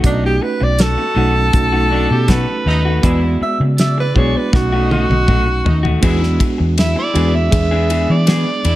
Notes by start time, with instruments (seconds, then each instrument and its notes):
0.03 fingered electric bass B1, horn section A3 B3 D#4, reed electric piano A3 C#4 D#4 F#4, tenor saxophone D4, kick, closed hi-hat
0.24 tenor saxophone G4, muted clean electric guitar stroke
0.42 tenor saxophone B4, muted clean electric guitar stroke
0.60 fingered electric bass B1, tenor saxophone D5, muted clean electric guitar stroke
0.78 horn section A3 B3 F#4, tenor saxophone A4, snare, closed hi-hat
0.98 muted clean electric guitar stroke
1.15 fingered electric bass B1, clean electric guitar F#3 A3 D#4 F#4, reed electric piano A3 C#4 D#4 F#4
1.35 muted clean electric guitar stroke
1.53 fingered electric bass B1, reed electric piano A3 C#4 D#4 F#4, muted clean electric guitar stroke, kick, closed hi-hat
1.72 clean electric guitar F#3 A3 D#4 F#4
1.91 clean electric guitar F#3 A3 D#4 F#4, harmonica D4
2.10 fingered electric bass B2, harmonica G4
2.28 clean electric guitar F#3 A3 D#4 F#4, harmonica B4, kick, snare, closed hi-hat
2.48 muted clean electric guitar stroke
2.65 fingered electric bass D#2, horn section A3 B3 D#4, muted clean electric guitar stroke
2.85 clean electric guitar A3 D#4 F#4
3.02 fingered electric bass E2, clean electric guitar E3 B3 D4 G#4, reed electric piano G#3 B3 F#4 D5, horn section G#3 D4 E4, kick, closed hi-hat
3.23 muted clean electric guitar stroke
3.41 tenor saxophone E5, muted fingered electric bass stroke, muted clean electric guitar stroke
3.60 fingered electric bass C#3, muted clean electric guitar stroke
3.77 horn section G#3 E4 D5, tenor saxophone E5, snare, closed hi-hat
3.98 tenor saxophone B4, muted clean electric guitar stroke
4.14 fingered electric bass B1, clean electric guitar E3 B3 D4 G#4, reed electric piano G#3 B3 D4 F#4, tenor saxophone C#5, kick
4.35 tenor saxophone B4, muted clean electric guitar stroke
4.52 fingered electric bass B1, reed electric piano A3 C#4 D#4 F#4, horn section A3 B3 D#4, tenor saxophone F#4, muted clean electric guitar stroke, kick, snare
4.72 clean electric guitar F#3 A3 D#4 F#4
4.90 clean electric guitar F#3 A3 D#4 F#4, tenor saxophone F#4, high tom
5.10 fingered electric bass B1, high tom
5.27 clean electric guitar F#3 A3 D#4 F#4, kick, mid tom
5.47 muted clean electric guitar stroke
5.64 fingered electric bass D#2, horn section A3 B3 D#4, muted clean electric guitar stroke, floor tom
5.83 clean electric guitar A3 D#4 F#4, floor tom
6.01 fingered electric bass E2, clean electric guitar E3 B3 D4 G#4, reed electric piano G#3 B3 D4 F#4, horn section G#3 D4 E4, kick, ride
6.21 muted clean electric guitar stroke, snare
6.39 muted clean electric guitar stroke, kick, ride
6.58 fingered electric bass E2, muted clean electric guitar stroke
6.77 horn section G#3 D4 E4, harmonica E5, snare, ride
6.96 harmonica D5, muted clean electric guitar stroke
7.14 fingered electric bass E2, clean electric guitar E3 B3 D4 G#4, reed electric piano G#3 B3 D4 F#4, ride
7.34 harmonica E5, muted clean electric guitar stroke
7.50 fingered electric bass E2, reed electric piano G#3 B3 D4 G#4, muted clean electric guitar stroke, kick, ride
7.71 clean electric guitar E3 B3 D4 G#4
7.90 clean electric guitar E3 B3 D4 G#4, ride
8.09 fingered electric bass E3, harmonica D5
8.26 clean electric guitar E3 B3 D4 G#4, snare, ride
8.47 muted clean electric guitar stroke
8.64 fingered electric bass E2, horn section G#3 D4 E4, muted clean electric guitar stroke, ride